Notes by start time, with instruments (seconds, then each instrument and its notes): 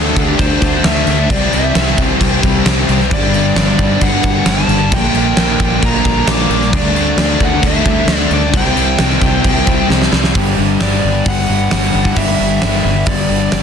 Already playing: fingered electric bass D2, overdriven electric guitar D3 A3 C4 D4 F#4, ambient pad G3 C5 D5 A5, lead electric guitar A4
0.16 fingered electric bass D2, overdriven electric guitar D3 A3 D4, kick, crash
0.38 fingered electric bass D2, overdriven electric guitar D3 A3 D4, lead electric guitar C5, kick, crash
0.61 fingered electric bass D2, overdriven electric guitar D3 A3 D4, kick, crash
0.84 fingered electric bass D2, overdriven electric guitar D3 A3 D4, lead electric guitar E5, snare, crash
1.06 fingered electric bass D2, overdriven electric guitar D3 A3 D4, crash
1.29 fingered electric bass C2, overdriven electric guitar C3 E3 G3 C4 G4, lead electric guitar D5, ambient pad E5 B5, kick, crash
1.51 fingered electric bass C2, overdriven electric guitar C3 G3 C4, lead electric guitar E5, crash
1.74 fingered electric bass C2, overdriven electric guitar C3 G3 C4, snare, crash
1.87 snare
1.97 fingered electric bass C2, overdriven electric guitar C3 G3 C4, kick, crash
2.19 fingered electric bass C2, overdriven electric guitar C3 G3 C4, kick, crash
2.41 fingered electric bass C2, overdriven electric guitar C3 G3 C4, kick, crash
2.64 fingered electric bass C2, overdriven electric guitar C3 G3 C4, snare, crash
2.86 fingered electric bass C2, overdriven electric guitar C3 G3 C4, crash
2.91 distorted electric guitar G3
3.00 snare
3.09 fingered electric bass G1, overdriven electric guitar G2 D3 G3 B3, ambient pad D5 F#5, lead electric guitar D5, kick, crash
3.13 overdriven electric guitar D4 G4
3.32 overdriven electric guitar G2 D3 G3, crash
3.55 fingered electric bass G1, overdriven electric guitar G2 D3 G3, lead electric guitar D5, snare, crash
3.68 snare
3.77 fingered electric bass G1, overdriven electric guitar G2 D3 G3, kick, crash
4.00 fingered electric bass G1, overdriven electric guitar G2 D3 G3, lead electric guitar F#5, kick, crash
4.23 fingered electric bass G1, overdriven electric guitar G2 D3 G3, kick, crash
4.46 fingered electric bass G1, overdriven electric guitar G2 D3 G3, lead electric guitar A5, snare, crash
4.68 fingered electric bass G1, overdriven electric guitar G2 D3 G3, crash
4.91 fingered electric bass A#1, overdriven electric guitar A#2 D3 F3 A#3 D4 F4, ambient pad G3 F5 A#5, lead electric guitar G5, kick, crash
5.14 fingered electric bass A#1, overdriven electric guitar A#2 F3 A#3, crash
5.37 fingered electric bass A#1, overdriven electric guitar A#2 F3 A#3, lead electric guitar G5, snare, crash
5.59 fingered electric bass A#1, overdriven electric guitar A#2 F3 A#3, kick, crash
5.82 fingered electric bass A#1, overdriven electric guitar A#2 F3 A#3, lead electric guitar A#5, kick, crash
6.04 fingered electric bass A#1, overdriven electric guitar A#2 F3 A#3, kick, crash
6.26 fingered electric bass A#1, overdriven electric guitar A#2 F3 A#3, snare, crash
6.31 lead electric guitar D6
6.49 fingered electric bass A#1, overdriven electric guitar A#2 F3 A#3, crash
6.62 snare
6.71 fingered electric bass D2, overdriven electric guitar D3 A3 C4 D4 F#4, ambient pad C5 A5, kick, crash
6.76 lead electric guitar D5
6.94 overdriven electric guitar D3 A3 D4, crash
7.17 fingered electric bass D2, overdriven electric guitar D3 A3 D4, snare, crash
7.21 lead electric guitar D5
7.40 fingered electric bass D2, overdriven electric guitar D3 A3 D4, kick, crash
7.44 lead electric guitar F#5
7.63 fingered electric bass D2, overdriven electric guitar D3 A3 D4, lead electric guitar E5, kick, crash
7.84 fingered electric bass D2, overdriven electric guitar D3 A3 D4, kick, crash
8.07 fingered electric bass D2, overdriven electric guitar D3 A3 D4, snare, crash
8.17 lead electric guitar D5
8.30 fingered electric bass D2, overdriven electric guitar D3 A3 D4, lead electric guitar D5, crash
8.52 fingered electric bass C2, overdriven electric guitar C3 E3 G3 C4 E4, ambient pad E5 B5, kick, crash
8.57 lead electric guitar G5
8.76 fingered electric bass C2, overdriven electric guitar C3 G3 C4, crash
8.98 fingered electric bass C2, overdriven electric guitar C3 G3 C4, snare, crash
9.10 snare
9.21 fingered electric bass C2, overdriven electric guitar C3 G3 C4, kick, crash
9.44 fingered electric bass C2, overdriven electric guitar C3 G3 C4, kick, crash
9.66 fingered electric bass C2, overdriven electric guitar C3 G3 C4, kick, crash
9.88 fingered electric bass C2, overdriven electric guitar C3 G3 C4, snare
10.02 snare
10.12 fingered electric bass C2, overdriven electric guitar C3 G3 C4, snare
10.24 snare
10.33 fingered electric bass G1, overdriven electric guitar G2 D3 G3 B3 D4 G4, ambient pad D5 F#5 B5, kick, open hi-hat
10.56 fingered electric bass G1, distorted electric guitar G3, overdriven electric guitar G3 B3 D4 G4
10.60 distorted electric guitar D3
10.79 fingered electric bass G1, distorted electric guitar G2 D3, overdriven electric guitar G3 B3 D4 G4, lead electric guitar D5, snare, open hi-hat
10.83 distorted electric guitar G3
11.03 fingered electric bass G1, distorted electric guitar D3 G3
11.26 fingered electric bass G1, lead electric guitar F#5, kick, open hi-hat
11.48 fingered electric bass G1, overdriven electric guitar G3 B3 D4 G4
11.70 fingered electric bass G1, overdriven electric guitar G2 D3 G3 B3 D4 G4, distorted electric guitar G2 D3 G3, snare, open hi-hat
11.92 fingered electric bass G1, overdriven electric guitar G2 D3 G3 B3 D4 G4
12.05 kick
12.15 fingered electric bass G1, overdriven electric guitar G2 D3 G3 B3 D4 G4, lead electric guitar E5, kick, open hi-hat
12.39 fingered electric bass G1, distorted electric guitar D3 G3, overdriven electric guitar G3 B3 D4 G4
12.61 fingered electric bass G1, distorted electric guitar G2 D3 G3, overdriven electric guitar G3 B3 D4, snare, open hi-hat
12.65 overdriven electric guitar G4
12.85 fingered electric bass G1, distorted electric guitar D3 G3
13.06 fingered electric bass G1, lead electric guitar D5, kick, open hi-hat
13.29 fingered electric bass G1, overdriven electric guitar G3 B3 D4 G4
13.51 fingered electric bass G1, overdriven electric guitar G2 D3 G3 B3 D4 G4, distorted electric guitar G2 D3, lead electric guitar D5, snare, open hi-hat
13.55 distorted electric guitar G3